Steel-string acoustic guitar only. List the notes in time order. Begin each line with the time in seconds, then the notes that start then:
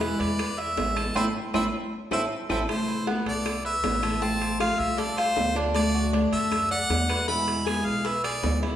0.00 B2 E3 G#3 B3 E4
0.39 muted steel-string acoustic guitar stroke
0.76 E3 G#3 B3 E4
0.96 E3 G#3 B3 E4
1.15 A3 B3 C4
1.53 A3 B3 C4
2.11 A3 B3 C4
2.50 A3 B3 C4
2.68 C3 E3 A3 E4
3.06 C3 E3 A3 B3 E4
3.45 muted steel-string acoustic guitar stroke
3.83 E3 A3 B3 E4
4.02 E3 A3 B3 E4
4.21 F3 A3 C4 F4
4.59 F3 A3 C4 F4
4.98 muted steel-string acoustic guitar stroke
5.36 F3 A3 C4 F4
5.55 A3 C4 F4
5.74 D3 A3 D4 F#4
6.12 D3 A3 D4 F#4
6.51 muted steel-string acoustic guitar stroke
6.89 D3 A3 D4 F#4
7.08 A3 D4 F#4
7.27 B2 E3 G#3 B3 E4
7.66 B2 E3 G#3 B3 E4
8.05 muted steel-string acoustic guitar stroke
8.43 E3 G#3 B3 E4
8.62 E3 G#3 B3 E4